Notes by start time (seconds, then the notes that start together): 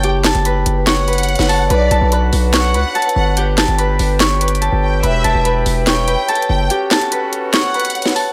Already playing: F#1 A4 B4 C#5 A5 B5 C#6
0.03 G4 G5, closed hi-hat
0.24 A4 A5, snare, clap, closed hi-hat
0.35 F#1, closed hi-hat
0.45 B4 B5, closed hi-hat
0.66 F#1, closed hi-hat
0.86 C#5 F#5 C#6, snare, clap, closed hi-hat
1.08 B4 B5, closed hi-hat
1.13 closed hi-hat
1.18 closed hi-hat
1.23 closed hi-hat
1.29 closed hi-hat
1.35 F#1, snare, closed hi-hat
1.42 closed hi-hat
1.48 A4 A5, open hi-hat
1.70 B1 D4 F#4 B4 D5 F#5 B5, closed hi-hat
1.91 B1 A4 A5, closed hi-hat
2.01 B1
2.12 B4 B5, closed hi-hat
2.33 B1, open hi-hat
2.54 C#5 F#5 C#6, snare, clap, closed hi-hat
2.74 C#2 B4 B5, closed hi-hat
2.95 A4 A5, closed hi-hat
3.02 closed hi-hat
3.09 closed hi-hat
3.16 G1 F#5
3.37 D4 G4 G5, closed hi-hat
3.57 A4 A5, snare, clap, closed hi-hat
3.68 G1, closed hi-hat
3.78 B4 B5, closed hi-hat
3.99 G1, open hi-hat
4.20 C#5 C#6, snare, clap, closed hi-hat
4.41 B4 B5, closed hi-hat
4.48 closed hi-hat
4.55 closed hi-hat
4.61 A4 A5, closed hi-hat
4.72 G1
4.83 G5
5.03 E1 E4 B4 E5 B5, closed hi-hat
5.24 E1 A4 A5, closed hi-hat
5.35 E1
5.45 B4 B5, closed hi-hat
5.66 E1, open hi-hat
5.87 C#5 G5 C#6, snare, clap, closed hi-hat
6.07 B4 B5, closed hi-hat
6.28 A4 A5, closed hi-hat
6.35 closed hi-hat
6.42 closed hi-hat
6.49 F#1 G5
6.70 C#4 F#4 G4 A4 F#5 G5, closed hi-hat
6.91 A4 A5, snare, clap, closed hi-hat
7.01 closed hi-hat
7.12 B4 B5, closed hi-hat
7.33 closed hi-hat
7.53 C#5 F#5 C#6, snare, clap, closed hi-hat
7.74 B4 B5, closed hi-hat
7.80 closed hi-hat
7.85 closed hi-hat
7.90 closed hi-hat
7.95 closed hi-hat
8.02 snare, closed hi-hat
8.09 closed hi-hat
8.15 A4 A5, open hi-hat